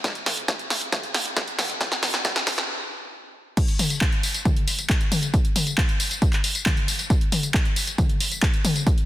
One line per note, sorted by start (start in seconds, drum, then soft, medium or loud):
0.04 kick loud
0.04 snare medium
0.04 closed hi-hat medium
0.15 closed hi-hat soft
0.26 snare medium
0.26 open hi-hat loud
0.26 mid tom medium
0.37 closed hi-hat soft
0.48 kick loud
0.48 snare medium
0.48 closed hi-hat medium
0.59 closed hi-hat soft
0.70 snare medium
0.70 open hi-hat loud
0.81 closed hi-hat soft
0.92 kick loud
0.92 snare medium
0.92 closed hi-hat medium
0.92 mid tom medium
1.03 closed hi-hat soft
1.14 snare medium
1.14 open hi-hat loud
1.26 closed hi-hat soft
1.37 kick loud
1.37 snare medium
1.37 closed hi-hat medium
1.48 closed hi-hat soft
1.59 snare medium
1.59 open hi-hat loud
1.59 mid tom medium
1.70 closed hi-hat soft
1.81 kick loud
1.81 snare medium
1.81 closed hi-hat medium
1.92 snare medium
1.92 closed hi-hat soft
2.03 snare medium
2.03 open hi-hat loud
2.03 mid tom medium
2.14 snare medium
2.14 closed hi-hat soft
2.25 kick loud
2.25 snare loud
2.25 closed hi-hat medium
2.36 snare medium
2.36 closed hi-hat soft
2.47 kick medium
2.47 snare loud
2.47 open hi-hat medium
2.58 snare medium
2.58 closed hi-hat soft
3.57 kick loud
3.57 closed hi-hat medium
3.57 crash loud
3.57 tambourine soft
3.68 closed hi-hat medium
3.79 open hi-hat loud
3.79 mid tom medium
3.79 tambourine medium
3.90 closed hi-hat medium
3.90 tambourine soft
4.01 kick loud
4.01 clap loud
4.01 closed hi-hat soft
4.12 closed hi-hat medium
4.23 open hi-hat medium
4.23 tambourine medium
4.34 closed hi-hat medium
4.34 tambourine soft
4.45 kick loud
4.45 closed hi-hat medium
4.45 mid tom medium
4.57 closed hi-hat medium
4.68 open hi-hat loud
4.68 tambourine medium
4.79 closed hi-hat medium
4.79 tambourine soft
4.90 kick loud
4.90 clap loud
4.90 closed hi-hat medium
5.01 closed hi-hat medium
5.12 open hi-hat loud
5.12 mid tom medium
5.12 tambourine medium
5.23 closed hi-hat medium
5.23 tambourine soft
5.34 kick loud
5.34 closed hi-hat medium
5.34 tambourine soft
5.45 closed hi-hat medium
5.56 open hi-hat loud
5.56 mid tom medium
5.56 tambourine medium
5.67 closed hi-hat medium
5.67 tambourine soft
5.78 kick loud
5.78 clap loud
5.89 closed hi-hat medium
6.00 open hi-hat loud
6.00 tambourine medium
6.11 closed hi-hat medium
6.11 tambourine soft
6.22 kick loud
6.22 closed hi-hat medium
6.22 tambourine soft
6.33 clap soft
6.33 closed hi-hat medium
6.44 open hi-hat loud
6.44 tambourine medium
6.55 closed hi-hat medium
6.55 tambourine soft
6.66 kick loud
6.66 clap loud
6.66 closed hi-hat medium
6.66 mid tom medium
6.77 closed hi-hat medium
6.88 open hi-hat loud
6.88 tambourine medium
6.99 closed hi-hat medium
6.99 tambourine soft
7.10 kick loud
7.10 closed hi-hat medium
7.10 tambourine soft
7.21 closed hi-hat medium
7.32 open hi-hat loud
7.32 mid tom medium
7.32 tambourine medium
7.43 closed hi-hat medium
7.43 tambourine soft
7.54 kick loud
7.54 clap loud
7.54 tambourine soft
7.65 closed hi-hat medium
7.76 open hi-hat loud
7.76 tambourine medium
7.87 closed hi-hat medium
7.87 tambourine soft
7.98 kick loud
7.98 closed hi-hat medium
7.98 mid tom medium
7.98 tambourine soft
8.09 closed hi-hat medium
8.21 open hi-hat loud
8.21 tambourine medium
8.32 closed hi-hat medium
8.32 tambourine soft
8.42 kick loud
8.42 clap loud
8.42 closed hi-hat medium
8.54 closed hi-hat medium
8.65 open hi-hat loud
8.65 mid tom medium
8.65 tambourine medium
8.76 closed hi-hat medium
8.76 tambourine soft
8.87 kick loud
8.87 closed hi-hat medium
8.87 tambourine soft
8.98 closed hi-hat medium